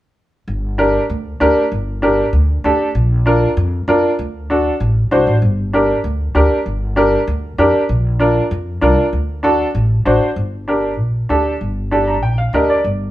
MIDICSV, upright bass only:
0, 0, Header, 1, 2, 480
1, 0, Start_track
1, 0, Key_signature, -2, "minor"
1, 0, Tempo, 309119
1, 745, Time_signature, 4, 2, 24, 8
1, 20356, End_track
2, 0, Start_track
2, 0, Title_t, "Upright bass"
2, 0, Program_c, 0, 32
2, 739, Note_on_c, 0, 31, 88
2, 1510, Note_off_c, 0, 31, 0
2, 1702, Note_on_c, 0, 38, 91
2, 2088, Note_off_c, 0, 38, 0
2, 2187, Note_on_c, 0, 38, 94
2, 2379, Note_off_c, 0, 38, 0
2, 2665, Note_on_c, 0, 31, 85
2, 3434, Note_off_c, 0, 31, 0
2, 3615, Note_on_c, 0, 38, 94
2, 4003, Note_off_c, 0, 38, 0
2, 4102, Note_on_c, 0, 38, 87
2, 4296, Note_off_c, 0, 38, 0
2, 4579, Note_on_c, 0, 34, 92
2, 5350, Note_off_c, 0, 34, 0
2, 5541, Note_on_c, 0, 41, 101
2, 5927, Note_off_c, 0, 41, 0
2, 6020, Note_on_c, 0, 41, 90
2, 6214, Note_off_c, 0, 41, 0
2, 6504, Note_on_c, 0, 38, 90
2, 7273, Note_off_c, 0, 38, 0
2, 7459, Note_on_c, 0, 33, 93
2, 7845, Note_off_c, 0, 33, 0
2, 7939, Note_on_c, 0, 36, 82
2, 8158, Note_off_c, 0, 36, 0
2, 8180, Note_on_c, 0, 33, 88
2, 8398, Note_off_c, 0, 33, 0
2, 8417, Note_on_c, 0, 31, 86
2, 9187, Note_off_c, 0, 31, 0
2, 9380, Note_on_c, 0, 38, 91
2, 9765, Note_off_c, 0, 38, 0
2, 9860, Note_on_c, 0, 38, 87
2, 10053, Note_off_c, 0, 38, 0
2, 10339, Note_on_c, 0, 31, 84
2, 11108, Note_off_c, 0, 31, 0
2, 11297, Note_on_c, 0, 38, 98
2, 11683, Note_off_c, 0, 38, 0
2, 11775, Note_on_c, 0, 41, 87
2, 11970, Note_off_c, 0, 41, 0
2, 12254, Note_on_c, 0, 34, 95
2, 13025, Note_off_c, 0, 34, 0
2, 13215, Note_on_c, 0, 41, 97
2, 13601, Note_off_c, 0, 41, 0
2, 13694, Note_on_c, 0, 36, 87
2, 13889, Note_off_c, 0, 36, 0
2, 14173, Note_on_c, 0, 38, 88
2, 14944, Note_off_c, 0, 38, 0
2, 15134, Note_on_c, 0, 33, 96
2, 15521, Note_off_c, 0, 33, 0
2, 15618, Note_on_c, 0, 33, 90
2, 15811, Note_off_c, 0, 33, 0
2, 16092, Note_on_c, 0, 31, 88
2, 17060, Note_off_c, 0, 31, 0
2, 17060, Note_on_c, 0, 34, 98
2, 17445, Note_off_c, 0, 34, 0
2, 17543, Note_on_c, 0, 38, 82
2, 17927, Note_off_c, 0, 38, 0
2, 18026, Note_on_c, 0, 31, 86
2, 18981, Note_off_c, 0, 31, 0
2, 18981, Note_on_c, 0, 34, 97
2, 19367, Note_off_c, 0, 34, 0
2, 19456, Note_on_c, 0, 38, 87
2, 19844, Note_off_c, 0, 38, 0
2, 19944, Note_on_c, 0, 31, 88
2, 20356, Note_off_c, 0, 31, 0
2, 20356, End_track
0, 0, End_of_file